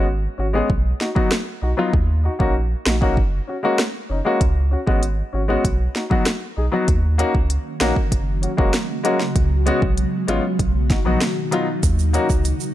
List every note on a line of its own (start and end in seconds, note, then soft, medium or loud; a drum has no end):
0.00 0.28 G#1 medium
0.38 0.62 G#1 medium
0.38 0.44 C#4 soft
0.38 0.45 F#4 medium
0.53 0.66 G#3 medium
0.53 0.66 B3 medium
0.53 0.67 C#4 medium
0.53 0.67 G#4 medium
0.70 0.93 B1 loud
0.70 kick medium
1.00 1.06 D#4 medium
1.00 1.07 F#4 medium
1.00 snare medium
1.15 1.28 F#3 medium
1.15 1.28 B3 medium
1.15 1.29 D#4 medium
1.15 1.29 F#4 medium
1.15 kick loud
1.31 cross-stick medium
1.31 snare loud
1.61 1.74 B1 medium
1.61 1.68 D#4 soft
1.61 1.69 F#4 medium
1.77 1.90 F#3 medium
1.77 1.90 B3 medium
1.77 1.90 D#4 medium
1.77 1.91 F4 medium
1.94 2.29 D#2 loud
1.94 kick loud
2.23 2.30 D#4 medium
2.23 2.31 F#4 medium
2.39 2.75 A#1 medium
2.39 2.52 A#3 medium
2.39 2.52 C#4 medium
2.39 2.52 D#4 medium
2.39 2.53 F#4 medium
2.39 kick medium
2.85 3.19 A#1 medium
2.85 2.92 D#4 soft
2.85 2.93 F#4 medium
2.85 cross-stick medium
2.85 snare loud
3.01 3.14 A#3 medium
3.01 3.14 C#4 medium
3.01 3.14 D#4 medium
3.01 3.15 F#4 medium
3.01 kick medium
3.17 3.40 F#1 loud
3.17 kick medium
3.47 3.54 C#4 medium
3.47 3.55 F#4 medium
3.63 3.76 G#3 medium
3.63 3.76 A#3 medium
3.63 3.76 C#4 medium
3.63 3.77 F#4 medium
3.78 cross-stick medium
3.78 snare loud
4.09 4.22 F#1 medium
4.09 4.16 C#4 medium
4.09 4.17 D#4 medium
4.25 4.37 G#3 medium
4.25 4.38 A#3 medium
4.25 4.38 C#4 medium
4.25 4.38 F#4 medium
4.41 4.76 C#2 loud
4.41 kick loud
4.41 closed hi-hat medium
4.71 4.78 C#4 medium
4.71 4.78 F#4 medium
4.86 5.22 G#1 medium
4.86 4.99 G#3 medium
4.86 5.00 B3 medium
4.86 5.00 C#4 medium
4.86 5.00 F#4 medium
4.86 kick medium
5.03 closed hi-hat medium
5.33 5.57 G#1 medium
5.33 5.39 C#4 soft
5.33 5.40 F#4 medium
5.48 5.61 G#3 medium
5.48 5.61 B3 medium
5.48 5.62 C#4 medium
5.48 5.62 F#4 medium
5.64 5.88 B1 loud
5.64 kick medium
5.64 closed hi-hat medium
5.95 6.01 D#4 soft
5.95 6.02 F#4 medium
5.95 snare medium
6.10 6.23 F#3 medium
6.10 6.23 B3 medium
6.10 6.24 D#4 medium
6.10 6.24 F#4 medium
6.10 kick loud
6.26 cross-stick medium
6.26 snare loud
6.26 closed hi-hat medium
6.56 6.69 B1 medium
6.56 6.63 D#4 soft
6.56 6.64 G#4 medium
6.72 6.85 F#3 medium
6.72 6.85 B3 medium
6.72 6.85 D#4 medium
6.72 6.86 F#4 medium
6.88 7.23 D#2 loud
6.88 12.74 F#3 medium
6.88 9.33 A#3 medium
6.88 12.74 F#4 medium
6.88 kick loud
6.88 closed hi-hat medium
7.18 7.31 A#3 medium
7.18 7.31 C#4 medium
7.18 7.32 D#4 medium
7.18 7.32 F#4 loud
7.18 closed hi-hat soft
7.35 7.58 C#2 medium
7.35 kick medium
7.50 closed hi-hat medium
7.80 7.93 A#1 medium
7.80 7.93 A#3 medium
7.80 7.93 C#4 medium
7.80 7.93 D#4 medium
7.80 7.94 F#4 medium
7.80 cross-stick medium
7.80 snare loud
7.80 closed hi-hat medium
7.96 kick medium
8.12 8.47 F#1 loud
8.12 10.57 C#3 medium
8.12 10.57 G#3 medium
8.12 kick loud
8.12 closed hi-hat medium
8.42 8.49 C#4 medium
8.42 8.49 F#4 medium
8.42 closed hi-hat soft
8.57 8.70 F1 medium
8.57 8.70 G#3 medium
8.57 8.70 A#3 medium
8.57 8.71 C#4 medium
8.57 8.71 F#4 medium
8.57 kick loud
8.73 cross-stick medium
8.73 snare loud
8.73 closed hi-hat medium
9.03 9.17 G#3 medium
9.03 9.17 A#3 medium
9.03 9.17 C#4 medium
9.03 9.17 F#4 medium
9.03 closed hi-hat medium
9.20 snare medium
9.36 9.71 C#2 loud
9.36 kick loud
9.36 closed hi-hat medium
9.66 9.79 G#3 medium
9.66 9.79 B3 medium
9.66 9.79 C#4 medium
9.66 9.79 F#4 medium
9.66 closed hi-hat soft
9.82 10.05 B1 medium
9.82 kick medium
9.98 closed hi-hat medium
10.27 10.40 G#1 loud
10.27 10.40 G#3 medium
10.27 10.41 B3 medium
10.27 10.41 C#4 medium
10.27 10.41 F4 medium
10.27 closed hi-hat medium
10.59 10.94 B1 loud
10.59 12.74 D#4 medium
10.59 kick medium
10.59 closed hi-hat medium
10.89 10.96 D#4 medium
10.89 10.97 F#4 medium
10.89 kick loud
10.89 snare medium
10.89 closed hi-hat soft
11.05 11.17 A#1 loud
11.05 11.18 F#3 medium
11.05 11.18 B3 medium
11.05 11.18 D#4 medium
11.05 11.19 F#4 medium
11.21 cross-stick medium
11.21 snare loud
11.21 closed hi-hat medium
11.51 11.64 F#3 medium
11.51 11.64 B3 medium
11.51 11.65 D#4 medium
11.51 11.65 F4 loud
11.51 closed hi-hat medium
11.83 12.18 D#2 loud
11.83 12.74 C#3 medium
11.83 12.74 A#3 medium
11.83 kick loud
11.83 closed hi-hat medium
11.83 shaker medium
11.99 shaker medium
12.13 12.26 A#3 medium
12.13 12.26 C#4 medium
12.13 12.27 D#4 medium
12.13 12.27 F#4 medium
12.13 closed hi-hat soft
12.13 shaker soft
12.30 12.53 C#2 medium
12.30 kick medium
12.30 shaker medium
12.45 closed hi-hat medium
12.45 shaker medium
12.60 shaker medium